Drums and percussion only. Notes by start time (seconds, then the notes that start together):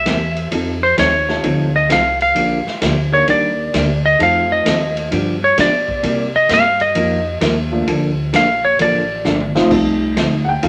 0.06 snare, hi-hat pedal, ride
0.36 ride
0.52 ride
0.98 snare, hi-hat pedal, ride
1.29 snare
1.44 ride
1.90 snare, hi-hat pedal, ride
2.21 ride
2.36 ride
2.67 snare
2.82 snare, hi-hat pedal, ride
3.28 ride
3.74 snare, hi-hat pedal, ride
4.20 ride
4.66 snare, hi-hat pedal, ride
4.97 ride
5.12 ride
5.58 snare, hi-hat pedal, ride
5.88 kick
6.03 ride
6.49 snare, hi-hat pedal, ride
6.80 ride
6.95 ride
7.41 snare, hi-hat pedal, ride
7.87 ride
8.33 snare, hi-hat pedal, ride
8.79 ride
9.25 snare, hi-hat pedal
9.40 mid tom
9.56 snare
9.71 kick, crash
10.17 snare, hi-hat pedal, ride
10.63 ride